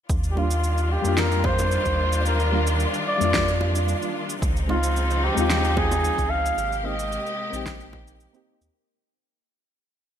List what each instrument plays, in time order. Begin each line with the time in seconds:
0.09 sub bass D#2, string section D#3 G3 D4 F4, kick, cabasa
0.24 cabasa
0.31 muted trumpet G4
0.35 synth keys G3 A#3 D4 F4, muted trumpet F4, high bongo
0.51 cabasa
0.64 cabasa
0.78 cabasa
0.92 muted trumpet G4
1.02 sub bass F2, synth keys G3 A#3, cabasa
1.06 synth keys D4 F4
1.17 muted trumpet A#4, snare, cabasa
1.32 cabasa
1.44 muted trumpet C5, kick, high bongo
1.59 high bongo, cabasa
1.71 cabasa
1.85 sub bass D#2, kick, cabasa
2.13 cabasa
2.26 muted trumpet A#4, cabasa
2.40 cabasa
2.51 synth keys G3 A#3 D4 F4
2.67 cabasa
2.80 cabasa
2.94 cabasa
3.07 muted trumpet D5
3.18 sub bass F2, synth keys G3 A#3, cabasa
3.22 synth keys D4 F4
3.34 kick, snare, cabasa
3.48 cabasa
3.61 high bongo
3.75 cabasa
3.88 cabasa
4.02 cabasa
4.30 cabasa
4.42 sub bass C#2, string section C#3 F3 C4 D#4, kick, cabasa
4.57 cabasa
4.67 synth keys G#3 C4 D#4 F4, muted trumpet F4, high bongo
4.83 cabasa
4.96 cabasa
5.11 cabasa
5.24 muted trumpet G4
5.34 sub bass D#2, synth keys G#3 C4, cabasa
5.38 synth keys D#4 F4
5.50 snare, cabasa
5.64 cabasa
5.77 muted trumpet G#4, kick, high bongo
5.91 high bongo, cabasa
6.04 cabasa
6.18 sub bass C#2, kick, cabasa
6.30 muted trumpet F5
6.46 cabasa
6.57 sub bass G#1, string section C3 G#3 A#3 G4, cabasa
6.72 cabasa
6.80 muted trumpet F5
6.84 synth keys A#3 C4 D#4 G4, muted trumpet D#5
6.99 cabasa
7.12 cabasa
7.26 cabasa
7.50 sub bass A#1, synth keys A#3 C4, cabasa
7.54 synth keys D#4 G4
7.66 kick, snare, cabasa
7.80 cabasa
7.93 kick, high bongo
8.07 cabasa
8.20 cabasa
8.33 synth keys A#3 C4 D#4 G4, cabasa
8.61 sub bass D#2, cabasa